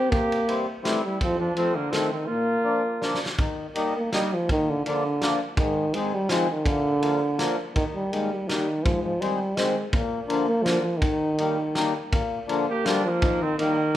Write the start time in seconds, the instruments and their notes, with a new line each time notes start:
Already playing: euphonium C4, trumpet G4
0.10 accordion C3, euphonium A#3, trumpet G4, kick, ride
0.32 ride
0.48 accordion E3 G3 C4, ride
0.83 accordion E3 G3 C4, euphonium A3, trumpet E4, snare, ride
1.04 euphonium G3, trumpet E4
1.21 accordion F2, euphonium F3, trumpet C4, kick, ride
1.40 euphonium F3, trumpet D4
1.56 euphonium F3, accordion F3 A3 C4, trumpet C4, ride
1.74 euphonium D3, trumpet A#3
1.90 euphonium D#3, accordion F3 A3 C4, trumpet C4, snare, ride
2.10 euphonium D#3, trumpet C4
2.26 accordion A#2, euphonium A#3, trumpet F4
2.63 accordion F3 A#3 D4
3.01 accordion F3 A#3 D4, snare
3.14 snare
3.26 snare
3.38 accordion D#3, kick, ride
3.75 accordion G3 A#3 D#4, ride
3.98 euphonium A#3
4.12 accordion G3 A#3 D#4, euphonium G3, snare, ride
4.34 euphonium F3
4.49 accordion A#2, euphonium D#3, kick, ride
4.70 euphonium D3
4.84 euphonium D3, accordion F3 A#3 D4, ride
5.22 accordion F3 A#3 D4, snare, ride
5.57 accordion G#2, euphonium D#3, kick, ride
5.94 accordion D#3 G#3 C4, euphonium G#3, ride
6.15 euphonium G3
6.29 accordion D#3 G#3 C4, euphonium F3, snare, ride
6.50 euphonium D#3
6.65 accordion A#2, euphonium D3, kick, ride
7.01 accordion D3 F3 A#3, ride
7.37 accordion D3 F3 A#3, snare, ride
7.75 euphonium D#3, accordion D#3, kick, ride
7.95 euphonium G3
8.12 accordion D#3 G3 A#3, euphonium G#3, ride
8.33 euphonium G3
8.48 euphonium D#3, accordion D#3 G3 A#3, snare, ride
8.84 accordion G#2, euphonium F3, kick, ride
9.04 euphonium F3
9.20 accordion D#3 G#3 C4, euphonium G3, ride
9.56 accordion D#3 G#3 C4, euphonium G#3, snare, ride
9.92 accordion A#2, kick, ride
10.28 accordion D3 F3 A#3, ride
10.48 euphonium A#3
10.63 accordion D3 F3 A#3, euphonium F3, snare, ride
10.82 euphonium F3
10.98 euphonium D#3, kick, ride
11.02 accordion D#3
11.38 accordion D#3 G3 A#3, ride
11.75 accordion D#3 G3 A#3, snare, ride
12.11 accordion A#2, kick, ride
12.47 accordion D3 F3 A#3, ride
12.69 euphonium A#3, trumpet G4
12.84 accordion D3 F3 A#3, euphonium G3, trumpet D4, snare, ride
13.05 euphonium F3, trumpet A#3
13.22 accordion D#3, kick, ride
13.42 euphonium D#3, trumpet C4
13.58 euphonium D#3, accordion D#3 G3 A#3, trumpet A#3, ride